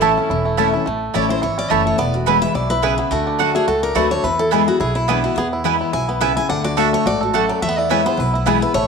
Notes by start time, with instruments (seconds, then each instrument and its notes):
Already playing: upright bass A1, steel-string acoustic guitar A2 A4, five-string banjo E3 E4, fiddle E4
0.01 steel-string acoustic guitar E3 A3 C#4 E4, mandolin A3 E4 C#5 A5, five-string banjo A4
0.17 five-string banjo C#4, steel-string acoustic guitar C#4 E4
0.30 upright bass E1, steel-string acoustic guitar E2, five-string banjo E4
0.45 five-string banjo A3
0.57 steel-string acoustic guitar E3 A3 C#4 E4, mandolin A3 E4 C#5 A5, five-string banjo C#4
0.73 steel-string acoustic guitar C#4 E4, five-string banjo E4
0.86 upright bass A1, steel-string acoustic guitar A2, five-string banjo A3
1.14 upright bass A1, steel-string acoustic guitar E3 A3 C#4 E4 D5, mandolin A3 E4 C#5 A5, five-string banjo E4
1.29 five-string banjo E3, steel-string acoustic guitar C#4 E4 C5
1.42 upright bass G#1, steel-string acoustic guitar E2 C#5, five-string banjo E4
1.58 five-string banjo C#4, steel-string acoustic guitar D5
1.70 upright bass F#1, steel-string acoustic guitar E3 A3 C#4 E4 E5, mandolin A3 E4 C#5 A5, five-string banjo A4
1.86 five-string banjo A3, steel-string acoustic guitar C#5
1.98 upright bass E1, steel-string acoustic guitar E2 D5, five-string banjo B3
2.14 steel-string acoustic guitar F#4
2.26 steel-string acoustic guitar E3 G#3 B3 E4 B4, mandolin B3 E4 B4 G#5, five-string banjo E4
2.42 five-string banjo E3, steel-string acoustic guitar E5
2.54 upright bass B1, steel-string acoustic guitar B2 D5, five-string banjo E4
2.70 five-string banjo E4, steel-string acoustic guitar B4
2.82 steel-string acoustic guitar C#3 G#4, mandolin B3 E4 B4 G#5, five-string banjo E4
2.98 five-string banjo B3, steel-string acoustic guitar E4
3.11 upright bass D2, steel-string acoustic guitar D3 F#4, five-string banjo A3
3.27 five-string banjo D4
3.39 steel-string acoustic guitar D3 A3 D4 F#4, mandolin A3 F#4 D5 F#5, five-string banjo F#4
3.55 five-string banjo A3, steel-string acoustic guitar D4 F#4 G#4
3.67 upright bass C#2, steel-string acoustic guitar A2 A4, five-string banjo F#4
3.83 five-string banjo D4, steel-string acoustic guitar A#4
3.95 upright bass D2, steel-string acoustic guitar D3 A3 D4 F#4 B4, mandolin A3 F#4 D5 F#5, five-string banjo A3
4.11 five-string banjo D4, steel-string acoustic guitar D4 F#4 C#5
4.24 upright bass E2, steel-string acoustic guitar E2 B4, five-string banjo E4
4.39 five-string banjo E4, steel-string acoustic guitar A4
4.51 steel-string acoustic guitar E3 G#3 B3 E4 G#4, mandolin B3 E4 B4 G#5, five-string banjo E4
4.67 five-string banjo B3, steel-string acoustic guitar B3 E4 F#4
4.80 upright bass B1, steel-string acoustic guitar B2 G#4, five-string banjo E4
4.95 steel-string acoustic guitar E4, five-string banjo E4
5.08 steel-string acoustic guitar E3 G#3 B3 D4 E4, mandolin B3 E4 B4 G#5, five-string banjo B3
5.24 five-string banjo E3, steel-string acoustic guitar F#4
5.36 steel-string acoustic guitar E2 G#4, upright bass E2, five-string banjo B3
5.53 five-string banjo E4
5.64 steel-string acoustic guitar E3 G#3 B3 E4, mandolin B3 E4 B4 G#5, five-string banjo B3
5.81 five-string banjo E4
5.93 upright bass B1, steel-string acoustic guitar B2 G#5, five-string banjo E4
6.09 five-string banjo B3, steel-string acoustic guitar B4
6.21 steel-string acoustic guitar C#3 E5, mandolin B3 E4 B4 G#5, five-string banjo E4
6.37 five-string banjo E4, steel-string acoustic guitar G#5
6.49 upright bass D2, steel-string acoustic guitar D3 F#5, five-string banjo D4
6.64 five-string banjo F#4, steel-string acoustic guitar D5
6.77 steel-string acoustic guitar D3 A3 D4 F#4 E5, mandolin A3 F#4 D5 F#5, five-string banjo A4
6.93 five-string banjo A3, steel-string acoustic guitar C#5
7.06 upright bass A1, steel-string acoustic guitar G#2 D5, five-string banjo F#4
7.21 steel-string acoustic guitar F#4, five-string banjo A4
7.34 steel-string acoustic guitar F#2 A4, mandolin A3 F#4 D5 F#5, five-string banjo A3
7.49 five-string banjo F#3, steel-string acoustic guitar D5
7.62 upright bass E2, steel-string acoustic guitar E2 E5, five-string banjo A3
7.69 five-string banjo B3
7.78 five-string banjo E4, steel-string acoustic guitar D5
7.89 steel-string acoustic guitar E3 G#3 B3 E4 C#5, mandolin B3 E4 B4 G#5, five-string banjo E4
8.04 five-string banjo B3, steel-string acoustic guitar B3 E4 C5
8.17 upright bass B1, steel-string acoustic guitar B2 B4, five-string banjo E4
8.34 five-string banjo E4, steel-string acoustic guitar E4
8.46 steel-string acoustic guitar E3 G#3 B3 E4 G#4, mandolin B3 E4 B4 G#5, five-string banjo B3
8.61 steel-string acoustic guitar B3 E4 B4, five-string banjo E4
8.74 upright bass A1, steel-string acoustic guitar A2 C#5, five-string banjo A3